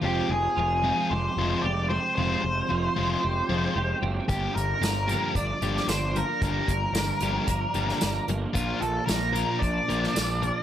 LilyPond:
<<
  \new Staff \with { instrumentName = "Lead electric guitar" } { \time 4/4 \key f \major \tempo 4 = 113 g'8 aes'4. c''4 d''8 c''8 | c''2.~ c''8 r8 | g'8 bes'4. d''4 c''8 bes'8 | bes'2.~ bes'8 r8 |
f'8 a'8 bes'4 d''2 | }
  \new Staff \with { instrumentName = "Distorted electric guitar" } { \time 4/4 \key f \major <f aes c' f'>8 r4 <f aes c' f'>8 r8 <f aes c' f'>8 r4 | <f aes c' f'>8 r4 <f aes c' f'>8 r8 <f aes c' f'>8 r4 | <g bes d' g'>8 r4 <g bes d' g'>8 r8 <g bes d' g'>8 r4 | <g bes d' g'>8 r4 <g bes d' g'>8 r8 <g bes d' g'>8 r4 |
<f bes d' bes'>8 r4 <f bes d' bes'>8 r8 <f bes d' bes'>8 r4 | }
  \new Staff \with { instrumentName = "Clean electric guitar" } { \clef bass \time 4/4 \key f \major f,4 f8 aes8 g'8 aes8 g'8 c'8 | f,4 f8 aes8 g'8 aes8 g'8 c'8 | g,4 d8 f8 d'8 f8 d'8 bes8 | g,4 d8 f8 d'8 f8 d'8 bes8 |
bes,4 bes,8 f8 d'8 f8 d'8 bes8 | }
  \new Staff \with { instrumentName = "Picked electric bass" } { \clef bass \time 4/4 \key f \major f,,8 f,,8 f,,4 f,,8 f,,8 f,,4 | f,,8 f,,8 f,,8 f,,8 f,,8 f,,8 f,,8 fis,,8 | g,,8 g,,8 g,,4 g,,8 g,,8 g,,4 | g,,8 g,,8 g,,8 g,,8 g,,8 g,,8 g,,8 g,,8 |
bes,,8 bes,,8 bes,,4 bes,,8 bes,,8 bes,,4 | }
  \new DrumStaff \with { instrumentName = "Drums" } \drummode { \time 4/4 r4 r4 r4 r4 | r4 r4 r4 r4 | <hh bd>8 hh8 <hh sn tamb>8 hh8 <hh bd>8 hh16 sn16 <hh sn tamb>8 hh8 | <hh bd>8 <hh bd>8 <hh sn tamb>8 hh8 <hh bd>8 hh16 sn16 <hh sn tamb>8 hh8 |
<hh bd>8 hh8 <hh sn tamb>8 hh8 <hh bd>8 hh16 sn16 <hh sn tamb>8 hh8 | }
>>